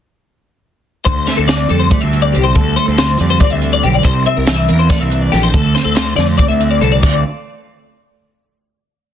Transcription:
1.05 D2 C5, kick, closed hi-hat
1.27 A3 E5, snare, closed hi-hat
1.37 D2 C4 A4
1.46 D3 D5, snare, closed hi-hat
1.69 F2 G3 A4, closed hi-hat
1.79 C5
1.90 A3 D5, kick, closed hi-hat
2.01 D2 C4 E5
2.13 D3, closed hi-hat
2.22 D5
2.33 C2 C4 G4, closed hi-hat
2.44 C5
2.55 D2 A4, kick, closed hi-hat
2.76 A3 C5, closed hi-hat
2.87 D2 C4 A4
2.98 D3 C5, snare, closed hi-hat
3.18 F2 D5, closed hi-hat
3.23 G3
3.30 C5
3.40 D5, kick, closed hi-hat
3.44 C4
3.50 D2 E5
3.62 D3, closed hi-hat
3.73 D5
3.83 B1 C4 G4, closed hi-hat
3.95 D5
4.03 C2 C3 C5, kick, closed hi-hat
4.26 C4 E5, closed hi-hat
4.37 C2 A#4
4.47 E3 E5, snare, closed hi-hat
4.69 E2 A#3 A#4, closed hi-hat
4.79 C5
4.89 A3 D5, kick, snare, closed hi-hat
5.00 C2 C4 E5
5.11 E3, closed hi-hat
5.21 D5
5.32 A#1 A3 G4, snare, closed hi-hat
5.43 C4 C5
5.54 D2 A4, kick, closed hi-hat
5.75 C4 C5, snare, closed hi-hat
5.85 D2 A4
5.95 D3 C5, snare, closed hi-hat
6.16 F2 A3 D5, snare, closed hi-hat
6.27 C5
6.38 C4 D5, kick, closed hi-hat
6.48 D2 E5
6.60 D3, closed hi-hat
6.71 D5
6.81 C2 C4 A4, closed hi-hat
6.92 D5
7.03 D2 D3 A3 C4 F4 D5, kick, crash

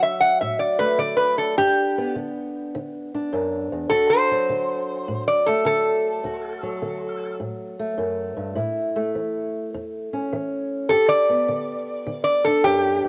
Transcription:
Already playing: D3 F#3 F#4
0.03 E5
0.20 F#5
0.41 A2 E5
0.59 D5
0.79 A3 B4
0.98 D3 D5
1.17 B4
1.38 A4
1.58 G2 D4 G4
1.98 B3
2.15 D3
2.75 D3
3.14 D4
3.33 F#2
3.72 E2
3.90 D2 F#4 A4
4.10 C5
4.31 F#3
4.49 D3
5.08 A2
5.28 D5
5.46 A3 A4
5.65 D3 A4
6.24 D2 F#4
6.63 F#3
6.82 D3
7.40 A2
7.79 A3
7.98 F#2
8.37 G2
8.55 A2 E4
8.96 A3
9.15 E3
9.74 E2
10.13 C#4
10.33 E3
10.89 G2 G4 A4
11.09 D5
11.29 B3
11.48 D3
12.07 D3
12.24 D5
12.44 D4 A4
12.64 F#2 G4
13.04 E2

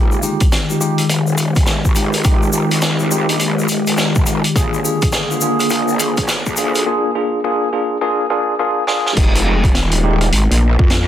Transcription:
Already playing: F1 D#3 G#3 D#4 F4 G4
0.12 shaker
0.23 G#3 D#4 F4 G4, shaker
0.40 kick, closed hi-hat, shaker
0.52 snare, closed hi-hat, shaker
0.70 G#3 D#4 F4 G4, shaker
0.81 G#3 D#4 F4 G4, shaker
0.98 cross-stick, closed hi-hat, shaker
1.09 F1, closed hi-hat, shaker
1.27 D#1, shaker
1.38 closed hi-hat, shaker
1.55 kick, closed hi-hat, shaker
1.66 snare, closed hi-hat, shaker
1.85 G#1, kick, shaker
1.95 G#3 D#4 F4 G4, closed hi-hat, shaker
2.13 closed hi-hat, shaker
2.24 F1 G#3 D#4 F4 G4, kick, closed hi-hat, shaker
2.42 shaker
2.53 F1 G#3 D#4 F4 G4, shaker
2.71 C2, closed hi-hat, shaker
2.81 snare, closed hi-hat, shaker
2.99 G#3 D#4 F4 G4, shaker
3.11 G#3 D#4 F4 G4, shaker
3.29 A#1, closed hi-hat, shaker
3.40 closed hi-hat, shaker
3.59 shaker
3.69 D#1, closed hi-hat, shaker
3.87 F1, closed hi-hat, shaker
3.97 snare, closed hi-hat, shaker
4.15 kick, shaker
4.26 G#3 D#4 F4 G4, closed hi-hat, shaker
4.44 closed hi-hat, shaker
4.55 A#1 D3 A#3 D4 F4 G#4, kick, closed hi-hat, shaker
4.74 shaker
4.84 A#3 D4 F4 G#4, shaker
5.02 kick, closed hi-hat, shaker
5.12 snare, closed hi-hat, shaker
5.31 A#3 D4 F4 G#4, shaker
5.41 A#3 D4 F4 G#4, shaker
5.59 cross-stick, closed hi-hat, shaker
5.70 A#1 A#3 D4 F4 G#4, closed hi-hat, shaker
5.88 G#1, shaker
5.99 A#3 D4 F4 G#4, closed hi-hat, shaker
6.17 kick, closed hi-hat, shaker
6.28 snare, closed hi-hat, shaker
6.46 D2 A#3 D4 F4 G#4, kick, shaker
6.57 A#3 D4 F4 G#4, closed hi-hat, shaker
6.75 closed hi-hat, shaker
6.86 A#3 D4 F4 G#4
7.15 A#3 D4 F4 G#4
7.44 A#3 D4 F4 G#4
7.73 A#3 D4 F4 G#4
8.01 A#3 D4 F4 G#4
8.30 A#3 D4 F4 G#4
8.59 A#3 D4 F4 G#4
8.87 A#3 D4 F4 G#4, snare
9.06 snare
9.17 F1 G#3 D#4 F4 G4, kick, closed hi-hat, crash
9.35 closed hi-hat
9.46 G#3 D#4 F4 G4
9.64 kick, closed hi-hat
9.75 D#1, snare, closed hi-hat
9.91 G#3 D#4 F4 G4, closed hi-hat
10.03 G#3 D#4 F4 G4
10.21 cross-stick, closed hi-hat
10.32 G#1, closed hi-hat
10.51 A#1, closed hi-hat
10.79 F2, kick
10.90 snare, closed hi-hat

